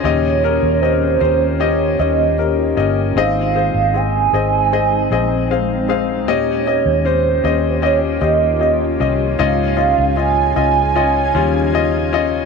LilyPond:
<<
  \new Staff \with { instrumentName = "Soft synth lead" } { \time 4/4 \key ees \mixolydian \tempo 4 = 77 des''4 c''4 des''8 ees''4 r8 | f''4 aes''2~ aes''8 r8 | des''4 c''4 des''8 ees''4 r8 | f''4 aes''2~ aes''8 r8 | }
  \new Staff \with { instrumentName = "Grand piano" } { \time 4/4 \key ees \mixolydian <des' g' ees''>8 <des' g' bes'>8 <des' g' ees''>8 <des' g' c''>8 <des' g' ees''>8 <des' g' ees''>8 <des' g' bes'>8 <des' g' ees''>8 | <c' aes' ees''>8 <c' aes' c''>8 <c' aes' c''>8 <c' aes' ees''>8 <c' aes' ees''>8 <c' aes' ees''>8 <c' aes' f''>8 <c' aes' f''>8 | <des' g' ees''>8 <des' g' ees''>8 <des' g' c''>8 <des' g' ees''>8 <des' g' ees''>8 <des' g' ees''>8 <des' g' ees''>8 <des' g' ees''>8 | <des' f' ees''>8 <des' f' ees''>8 <des' f' ees''>8 <des' f' ees''>8 <des' f' ees''>8 <g des' f'>8 <des' f' ees''>8 <des' f' ees''>8 | }
  \new Staff \with { instrumentName = "Grand piano" } { \clef bass \time 4/4 \key ees \mixolydian bes,4. r2 r8 | <aes, ees>4. r2 r8 | bes,4. r2 r8 | aes,4. r2 r8 | }
  \new Staff \with { instrumentName = "Ambient pad" } { \time 4/4 \key ees \mixolydian << { <ees bes des' g'>1 | <aes ees'>1 | <ees bes des' g'>1 | <des des' ees' aes''>1 | } \\ { f'1 | c'1 | f'1~ | f'1 | } >> }
  \new Staff \with { instrumentName = "Fingered electric bass" } { \clef bass \time 4/4 \key ees \mixolydian ees,8. ees,8. ees,4 ees,4 g,,8 | aes,,8. aes,,8. aes,,4 bes,,4. | ees,8. ees,8. ees,4 ees,4 c,8 | des,8. des,8. des,4 ees,4. | }
>>